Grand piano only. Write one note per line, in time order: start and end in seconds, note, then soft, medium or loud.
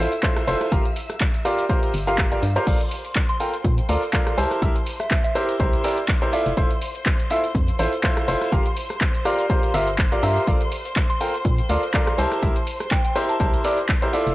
0.00 0.10 E4 medium
0.00 0.10 F4 medium
0.00 0.10 A4 medium
0.00 0.10 C5 medium
0.23 0.45 E4 medium
0.23 0.45 F4 medium
0.23 0.45 A4 medium
0.23 0.45 C5 loud
0.47 0.69 E4 medium
0.47 0.69 F4 medium
0.47 0.69 A4 medium
0.47 0.69 C5 loud
0.72 0.83 F4 medium
0.72 0.83 G4 medium
0.72 0.83 A#4 medium
0.72 0.83 F5 loud
1.45 1.63 F4 medium
1.45 1.63 G4 medium
1.45 1.63 A#4 medium
1.45 1.63 D5 loud
1.69 1.91 F4 medium
1.69 1.91 G4 medium
1.69 1.91 A#4 medium
1.69 1.91 C5 loud
2.07 2.28 F4 medium
2.07 2.28 G4 medium
2.07 2.28 A#4 medium
2.07 2.28 F5 loud
2.32 2.41 F4 medium
2.32 2.41 G4 medium
2.32 2.41 A#4 medium
2.32 2.41 D5 medium
2.56 2.65 F4 medium
2.56 2.65 G4 medium
2.56 2.65 A#4 medium
2.56 2.65 C5 loud
2.67 2.79 F4 medium
2.67 2.79 A4 medium
2.67 2.79 A#4 medium
2.67 2.79 D5 loud
3.40 3.52 F4 medium
3.40 3.52 A4 medium
3.40 3.52 A#4 medium
3.40 3.52 G5 medium
3.89 4.01 F4 medium
3.89 4.01 A4 medium
3.89 4.01 A#4 medium
3.89 4.01 D5 medium
4.13 4.35 F4 medium
4.13 4.35 A4 medium
4.13 4.35 A#4 medium
4.13 4.35 D5 loud
4.38 4.59 E4 medium
4.38 4.59 G4 medium
4.38 4.59 A#4 medium
4.38 4.59 C5 loud
4.62 4.74 E4 medium
4.62 4.74 G4 medium
4.62 4.74 A#4 medium
4.62 4.74 E5 loud
5.35 5.53 E4 loud
5.35 5.53 G4 medium
5.35 5.53 A#4 medium
5.35 5.53 C5 loud
5.60 5.81 E4 medium
5.60 5.81 G4 medium
5.60 5.81 A#4 medium
5.60 5.81 C5 loud
5.84 5.96 E4 loud
5.84 5.96 G4 medium
5.84 5.96 A#4 medium
5.84 5.96 D5 loud
6.22 6.31 E4 medium
6.22 6.31 G4 medium
6.22 6.31 A#4 medium
6.22 6.31 C5 medium
6.33 6.50 E4 loud
6.33 6.50 F4 medium
6.33 6.50 A4 medium
6.33 6.50 D5 loud
6.57 6.69 E4 loud
6.57 6.69 F4 medium
6.57 6.69 A4 medium
6.57 6.69 C5 loud
7.30 7.42 E4 medium
7.30 7.42 F4 medium
7.30 7.42 A4 medium
7.30 7.42 E5 medium
7.79 7.91 E4 medium
7.79 7.91 F4 medium
7.79 7.91 A4 medium
7.79 7.91 C5 loud
8.04 8.25 E4 medium
8.04 8.25 F4 medium
8.04 8.25 A4 medium
8.04 8.25 C5 loud
8.28 8.50 E4 medium
8.28 8.50 F4 medium
8.28 8.50 A4 medium
8.28 8.50 C5 loud
8.52 8.64 F4 medium
8.52 8.64 G4 medium
8.52 8.64 A#4 medium
8.52 8.64 F5 loud
9.25 9.43 F4 loud
9.25 9.43 G4 medium
9.25 9.43 A#4 medium
9.25 9.43 D5 loud
9.50 9.72 F4 medium
9.50 9.72 G4 medium
9.50 9.72 A#4 medium
9.50 9.72 C5 loud
9.74 9.86 F4 loud
9.74 9.86 G4 medium
9.74 9.86 A#4 medium
9.74 9.86 E5 loud
10.12 10.21 F4 medium
10.12 10.21 G4 medium
10.12 10.21 A#4 medium
10.12 10.21 D5 medium
10.23 10.41 F4 loud
10.23 10.41 G4 medium
10.23 10.41 A#4 medium
10.23 10.41 E5 loud
10.47 10.59 F4 medium
10.47 10.59 A4 medium
10.47 10.59 A#4 medium
10.47 10.59 D5 loud
11.21 11.32 F4 medium
11.21 11.32 A4 medium
11.21 11.32 A#4 medium
11.21 11.32 G5 medium
11.69 11.81 F4 medium
11.69 11.81 A4 medium
11.69 11.81 A#4 medium
11.69 11.81 D5 medium
11.94 12.16 F4 medium
11.94 12.16 A4 medium
11.94 12.16 A#4 medium
11.94 12.16 D5 loud
12.18 12.40 E4 medium
12.18 12.40 G4 medium
12.18 12.40 A#4 medium
12.18 12.40 C5 loud
12.42 12.54 E4 medium
12.42 12.54 G4 medium
12.42 12.54 A#4 medium
12.42 12.54 E5 loud
13.16 13.33 E4 loud
13.16 13.33 G4 medium
13.16 13.33 A#4 medium
13.16 13.33 C5 loud
13.40 13.62 E4 medium
13.40 13.62 G4 medium
13.40 13.62 A#4 medium
13.40 13.62 C5 loud
13.64 13.76 E4 loud
13.64 13.76 G4 medium
13.64 13.76 A#4 medium
13.64 13.76 D5 loud
14.02 14.12 E4 medium
14.02 14.12 G4 medium
14.02 14.12 A#4 medium
14.02 14.12 C5 medium
14.13 14.31 E4 loud
14.13 14.31 F4 medium
14.13 14.31 A4 medium
14.13 14.31 D5 loud